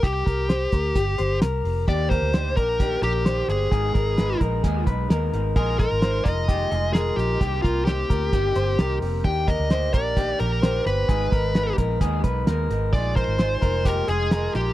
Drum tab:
HH |xxxxxxxo|xxxxxxxx|xxxxxxxx|xxxxxxxx|
SD |--o--oo-|--o--oo-|--o---o-|--o--oo-|
BD |oo-oo---|oo-oo---|oo-ooo--|oo-oo---|

HH |xxxxxxxo|xxxxxxxx|xxxxxxxx|xxxxxxxx|
SD |--o---o-|--o---o-|--o---o-|--o---o-|
BD |oo-oo---|oo-oo---|oo-ooo--|oo-oo---|